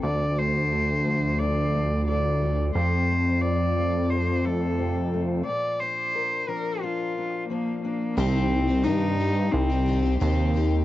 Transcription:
<<
  \new Staff \with { instrumentName = "Cello" } { \time 4/4 \key c \dorian \tempo 4 = 88 d''8 c''4. d''4 d''8. r16 | c''4 d''4 c''8 a'4 r8 | d''8 c''4 bes'8 f'4 bes8 bes8 | c'4 ees'4 c'4 c'8. r16 | }
  \new Staff \with { instrumentName = "Twelve-string acoustic guitar" } { \time 4/4 \key c \dorian r1 | r1 | r1 | <c ees c' ees' g'>8. <c' ees' g'>16 <c ees c' ees' g'>8 <ees c' ees' g'>8. <c' ees' g'>16 <ees c' ees' g'>16 <c' ees' g'>16 <c ees c' ees' g'>8 <ees c' ees' g'>8 | }
  \new Staff \with { instrumentName = "Steel-string acoustic guitar" } { \time 4/4 \key c \dorian << { a8 a8 a'8 a8 a'8 a8 a'8 a8 | <f a c' a'>8 a8 a'8 a8 a'8 a8 c'8 a8 | r8 d'8 bes'8 d'8 d'8 d'8 d'8 d'8 | r1 | } \\ { <d f>4. f4. a,4 | f,4. f4. c4 | bes,4. f4. f4 | r1 | } >> }
  \new Staff \with { instrumentName = "Analog synth bass" } { \clef bass \time 4/4 \key c \dorian d,1 | f,1 | r1 | c,4 g,4 c,4 ees,4 | }
>>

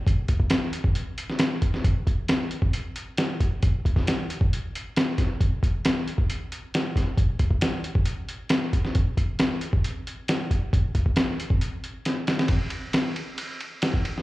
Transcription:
\new DrumStaff \with { instrumentName = "Drums" } \drummode { \time 4/4 \tempo 4 = 135 <hh bd>8 <hh bd>16 bd16 <hh sn>8 hh16 bd16 hh8 hh16 sn16 <hh sn>8 <hh bd>16 sn16 | <hh bd>8 <hh bd>8 <hh sn>8 hh16 bd16 hh8 hh8 <hh sn>8 <hh bd>8 | <hh bd>8 <hh bd>16 <bd sn>16 <hh sn>8 hh16 bd16 hh8 hh8 <hh sn>8 <hh bd sn>8 | <hh bd>8 <hh bd>8 <hh sn>8 hh16 bd16 hh8 hh8 <hh sn>8 <hh bd sn>8 |
<hh bd>8 <hh bd>16 bd16 <hh sn>8 hh16 bd16 hh8 hh8 <hh sn>8 <hh bd>16 sn16 | <hh bd>8 <hh bd>8 <hh sn>8 hh16 bd16 hh8 hh8 <hh sn>8 <hh bd>8 | <hh bd>8 <hh bd>16 bd16 <hh sn>8 hh16 bd16 hh8 hh8 <hh sn>8 <hh sn>16 sn16 | <bd cymr>8 cymr8 <cymr sn>8 cymr8 cymr8 cymr8 <cymr sn>16 bd16 cymr16 sn16 | }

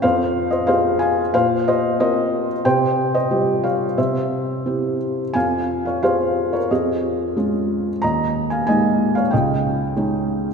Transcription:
\new Staff \with { instrumentName = "Felt piano" } { \time 4/4 \key f \minor \tempo 4 = 91 << { <c'' f''>8. <c'' ees''>16 <c'' f''>8 <f'' aes''>8 <c'' f''>8 <c'' ees''>8 <c'' ees''>8. r16 | <c'' g''>8. <c'' ees''>8. <des'' f''>8 <c'' e''>4. r8 | <f'' aes''>8. <des'' f''>16 <c'' f''>8. <bes' des''>16 <aes' ees''>4 r4 | <ees'' bes''>8. <f'' aes''>16 <ees'' aes''>8. <des'' f''>16 <ees'' g''>4 r4 | } \\ { f,4 <c' f' aes'>4 bes,4 <c' f' bes'>4 | c4 <g f' g'>4 c4 <c' e' g'>4 | f,4 <c' f' aes'>4 f,4 <aes des' f'>4 | ees,4 <aes bes ees'>4 des,4 <aes des' ees'>4 | } >> }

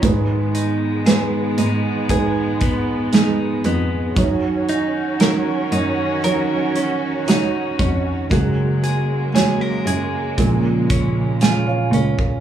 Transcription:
<<
  \new Staff \with { instrumentName = "Clean electric guitar" } { \time 4/4 \key ees \minor \tempo 4 = 58 aes,8 ees'8 aes'8 ees'8 aes'8 ces'8 ees'8 ces'8 | r8 ees'8 bes'8 ees'8 bes'8 des'8 ees'8 des'8 | ges8 aes'8 aes'16 bes'16 aes'8 bes,8 des'8 f'8 des'8 | }
  \new Staff \with { instrumentName = "Felt piano" } { \time 4/4 \key ees \minor <aes ees' ces''>4 <aes ees' ces''>4 <aes ees' ces''>4 <aes ees' aes'>4 | <ges ees' des''>4 <ges ees' bes'>4 <ges ees' des''>4 <ees' ges' des''>4 | <aes ges' bes'>4 <aes ges' des''>4 <aes des' bes'>4 <f'' aes''>16 <des'' f''>16 <bes' des''>16 bes'16 | }
  \new Staff \with { instrumentName = "Felt piano" } { \clef bass \time 4/4 \key ees \minor <aes, ees>4. r2 r8 | r1 | des4. r8 <bes, f>4. r8 | }
  \new Staff \with { instrumentName = "String section" } { \clef bass \time 4/4 \key ees \minor << { <ees aes ces'>1 | <des' ges'>1 | <aes bes>1 | } \\ { r1 | ees1 | ges2 des2 | } >> }
  \new Staff \with { instrumentName = "Cello" } { \clef bass \time 4/4 \key ees \minor aes,4. aes,2 f,8 | ges,4. ges,2 f,8 | ges,4. ges,8 bes,4 r8 des,8 | }
  \new DrumStaff \with { instrumentName = "Drums" } \drummode { \time 4/4 <hh bd>8 hh8 <hh sn>8 hh8 <hh bd>8 <hh bd>8 <hh sn>8 hh8 | <hh bd>8 hh8 <hh sn>8 hh8 hh8 hh8 <hh sn>8 <hh bd>8 | <hh bd>8 hh8 <hh sn>8 hh8 <hh bd>8 <hh bd>8 <hh sn>8 hh16 bd16 | }
>>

